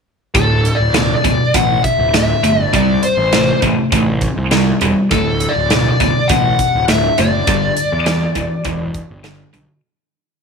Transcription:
0.35 D1 D2 A2 A4, kick, closed hi-hat
0.65 closed hi-hat
0.75 D5
0.80 D1
0.94 D2 B2, snare, closed hi-hat
1.15 D5
1.24 D1 D2 B2, kick, closed hi-hat
1.54 A1 D2 B2 F#5, kick, closed hi-hat
1.84 E5, kick, closed hi-hat
1.99 D1
2.14 D2 A2 E5, snare, closed hi-hat
2.43 G1 D2 A2, closed hi-hat
2.62 D5
2.73 C2 C3 G3 D5, kick, closed hi-hat
3.03 C5, closed hi-hat
3.17 A1
3.33 C3 A3, snare, closed hi-hat
3.62 A1 C3 A3, kick, closed hi-hat
3.92 A1 C3 A3, kick, closed hi-hat
4.21 kick, closed hi-hat
4.37 C2
4.51 C3 G3, snare, closed hi-hat
4.81 E1 C3 G3, closed hi-hat
5.11 D1 D2 A2 A4, kick, closed hi-hat
5.40 closed hi-hat
5.49 D5
5.56 D1
5.70 D2 B2, snare, closed hi-hat
5.89 D5
6.00 D1 D2 B2, kick, closed hi-hat
6.28 A1 D2 B2 F#5, kick, closed hi-hat
6.59 kick, closed hi-hat
6.75 D1
6.88 D2 A2 E5, snare, closed hi-hat
7.18 F#1 D2 A2 D5, closed hi-hat
7.47 G1 G2 D3, kick, closed hi-hat
7.77 closed hi-hat
7.92 E2
8.06 G2 E3, snare, closed hi-hat
8.35 E1 G2 E3, kick, closed hi-hat
8.65 E1 G2 E3, kick, closed hi-hat
8.94 kick, closed hi-hat
9.10 G1
9.23 G2 D3, snare, closed hi-hat
9.53 B1 G2 D3, closed hi-hat

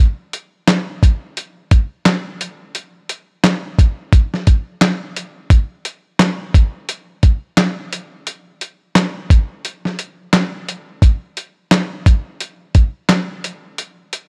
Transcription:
0.33 closed hi-hat
0.68 snare, clap, closed hi-hat
1.03 kick, closed hi-hat
1.37 closed hi-hat
1.71 kick, closed hi-hat
2.06 snare, clap, closed hi-hat
2.41 closed hi-hat
2.75 closed hi-hat
3.09 closed hi-hat
3.44 snare, clap, closed hi-hat
3.79 kick, closed hi-hat
4.13 kick, closed hi-hat
4.34 snare
4.47 kick, closed hi-hat
4.81 snare, clap, closed hi-hat
5.16 closed hi-hat
5.50 kick, closed hi-hat
5.85 closed hi-hat
6.19 snare, clap, closed hi-hat
6.54 kick, closed hi-hat
6.89 closed hi-hat
7.23 kick, closed hi-hat
7.57 snare, clap, closed hi-hat
7.93 closed hi-hat
8.27 closed hi-hat
8.61 closed hi-hat
8.95 snare, clap, closed hi-hat
9.30 kick, closed hi-hat
9.65 closed hi-hat
9.85 snare
9.99 closed hi-hat
10.33 snare, clap, closed hi-hat
10.69 closed hi-hat
11.02 kick, closed hi-hat
11.37 closed hi-hat
11.71 snare, clap, closed hi-hat
12.06 kick, closed hi-hat
12.40 closed hi-hat
12.75 kick, closed hi-hat
13.09 snare, clap, closed hi-hat
13.44 closed hi-hat
13.78 closed hi-hat
14.13 closed hi-hat

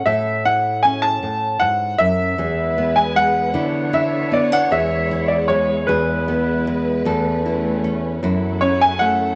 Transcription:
0.06 A2 A4 E5
0.45 E4 F#5
0.83 C#4 G#5
1.02 A5
1.23 A2
1.60 G#2 F#5
1.98 F#2 E5
2.38 E2 G#3 E4 G#4 B4
2.78 B3
2.96 G#5
3.16 G#3 F#5
3.54 D3 B3 D4 E4 C#5
3.93 E4 E5
4.32 B3 D5
4.52 D4 F#5
4.71 E2 G#3 E4 G#4 E5
5.11 E4
5.28 D5
5.48 G#3 C#5
5.87 E2 E4 G#4 B4
6.28 B3
6.67 G#3
7.05 E2 E3 A3 C#4 A4
7.46 E4
7.84 C#4
8.22 F#2 F#3 E4 A4
8.61 C#4 C#5
8.81 G#5
8.99 A3 F#5

